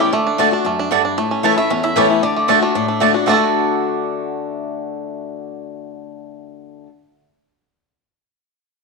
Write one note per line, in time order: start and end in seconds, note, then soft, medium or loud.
0.00 0.10 E2 medium
0.00 0.10 C#4 medium
0.00 0.13 C#4 medium
0.00 0.12 E4 medium
0.00 0.13 E4 medium
0.00 0.13 G4 medium
0.00 0.88 D5 medium
0.13 0.37 D3 medium
0.13 0.38 A3 medium
0.27 0.52 D4 medium
0.38 0.51 D3 medium
0.38 0.48 A3 medium
0.38 0.52 A3 loud
0.38 0.65 A3 medium
0.38 0.52 D4 loud
0.38 0.48 F#4 medium
0.38 0.50 F#4 loud
0.38 0.48 D5 loud
0.38 0.48 A5 medium
0.51 0.78 D4 medium
0.51 0.65 D4 medium
0.51 0.64 F#4 medium
0.65 0.90 F#2 medium
0.65 1.03 A3 medium
0.79 0.91 D4 medium
0.91 1.16 G2 medium
0.91 1.00 A3 medium
0.91 1.04 D4 medium
0.91 1.01 F#4 loud
0.91 1.01 D5 medium
0.91 1.01 A5 loud
1.05 1.18 D4 medium
1.18 1.68 A2 medium
1.18 1.57 A3 medium
1.31 1.68 C#4 medium
1.43 1.56 E3 medium
1.43 1.53 A3 medium
1.43 1.57 A3 loud
1.43 1.57 C#4 loud
1.43 1.53 E4 medium
1.43 1.81 E4 medium
1.43 1.55 E4 loud
1.43 1.53 C#5 medium
1.43 1.58 C#5 medium
1.43 1.53 A5 medium
1.56 2.00 A3 medium
1.56 1.70 C#4 medium
1.56 1.69 E4 medium
1.56 1.71 E5 loud
1.70 2.20 E2 medium
1.70 2.07 C#4 medium
1.70 1.84 C#5 medium
1.84 2.09 E4 medium
1.84 1.97 E5 loud
1.96 2.21 E3 medium
1.96 2.05 A3 medium
1.96 2.22 A3 medium
1.96 2.22 C#4 medium
1.96 2.05 E4 loud
1.96 2.22 E4 loud
1.96 2.23 G4 medium
1.96 2.06 C#5 loud
1.96 2.23 C#5 loud
1.96 2.06 A5 loud
2.10 2.23 E4 medium
2.23 2.60 D3 medium
2.23 2.47 D3 medium
2.23 2.97 D5 medium
2.36 2.61 A3 medium
2.48 2.61 D3 loud
2.48 2.58 A3 medium
2.48 2.62 A3 loud
2.48 2.74 D4 medium
2.48 2.62 D4 loud
2.48 2.58 F#4 medium
2.48 2.60 F#4 loud
2.48 2.58 D5 medium
2.48 2.58 A5 medium
2.62 2.99 A3 medium
2.62 2.75 D4 soft
2.62 2.74 F#4 medium
2.75 3.25 A2 medium
2.75 2.87 D4 medium
2.88 3.00 D4 medium
3.00 3.13 D3 medium
3.00 3.10 A3 medium
3.00 3.14 A3 medium
3.00 3.13 D4 medium
3.00 3.14 D4 medium
3.00 3.10 F#4 medium
3.00 3.13 F#4 medium
3.00 3.10 D5 loud
3.00 3.10 A5 medium
3.14 3.27 D4 medium
3.14 3.28 D4 soft
3.14 3.27 F#4 medium
3.26 6.87 D3 medium
3.26 6.86 A3 medium
3.26 6.83 A3 medium
3.26 6.88 A3 medium
3.26 6.88 D4 medium
3.26 3.33 D4 medium
3.26 6.87 F#4 medium
3.26 6.88 D5 medium
3.26 6.88 A5 medium
3.30 6.89 F#4 medium
3.30 6.85 F#4 medium
3.30 6.86 A4 medium